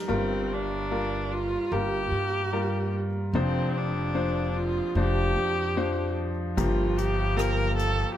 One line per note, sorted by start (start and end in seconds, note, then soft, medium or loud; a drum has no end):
0.00 0.08 G3 medium
0.00 0.12 D#4 medium
0.00 0.09 A#4 medium
0.08 3.30 G1 soft
0.08 1.55 G1 medium
0.08 3.30 G2 soft
0.08 0.63 G3 medium
0.08 0.63 F4 medium
0.08 0.63 A#4 medium
0.12 0.55 C4 medium
0.53 1.33 D4 medium
0.91 1.45 G3 medium
0.91 1.45 F4 medium
0.91 1.45 A#4 medium
1.32 1.73 F4 medium
1.72 2.08 G1 medium
1.72 2.26 G3 medium
1.72 2.26 F4 medium
1.72 2.94 G4 medium
1.72 2.26 A#4 medium
2.12 3.35 G2 medium
2.53 3.07 G3 medium
2.53 3.07 F4 medium
2.53 3.07 A#4 medium
3.33 4.79 F1 medium
3.33 6.54 F1 medium
3.33 6.54 F2 soft
3.33 3.88 F3 medium
3.33 3.79 C4 medium
3.33 3.88 D4 medium
3.33 3.88 C5 medium
3.77 4.58 D4 medium
4.14 4.68 F3 medium
4.14 4.69 D4 medium
4.14 4.69 C5 medium
4.57 4.97 F4 medium
4.95 5.32 F1 medium
4.95 5.50 F3 medium
4.95 5.50 D4 medium
4.95 5.50 C5 medium
5.00 6.15 G4 medium
5.36 6.59 F2 medium
5.77 6.31 F3 medium
5.77 6.30 D4 medium
5.77 6.30 C5 medium
6.57 8.17 G1 medium
6.57 8.02 G1 medium
6.57 8.17 G2 medium
6.57 7.11 F3 medium
6.57 7.11 A#3 medium
6.57 6.98 F4 medium
6.57 7.11 G4 medium
6.57 kick medium
6.57 closed hi-hat medium
6.97 7.39 G4 medium
6.97 closed hi-hat soft
7.37 7.91 F3 medium
7.37 7.91 A#3 medium
7.37 7.91 G4 medium
7.37 7.76 A#4 medium
7.37 cross-stick medium
7.37 closed hi-hat medium
7.77 8.15 A4 medium
7.77 closed hi-hat soft